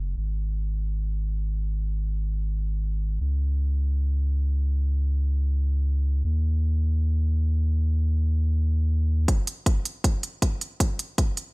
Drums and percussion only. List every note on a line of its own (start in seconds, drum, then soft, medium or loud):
9.28 kick loud
9.28 closed hi-hat medium
9.47 closed hi-hat medium
9.66 kick medium
9.66 closed hi-hat medium
9.85 closed hi-hat medium
10.04 kick loud
10.04 closed hi-hat medium
10.23 closed hi-hat medium
10.42 kick loud
10.42 closed hi-hat medium
10.61 closed hi-hat medium
10.80 kick medium
10.80 closed hi-hat medium
10.99 closed hi-hat medium
11.18 kick loud
11.18 closed hi-hat medium
11.37 closed hi-hat medium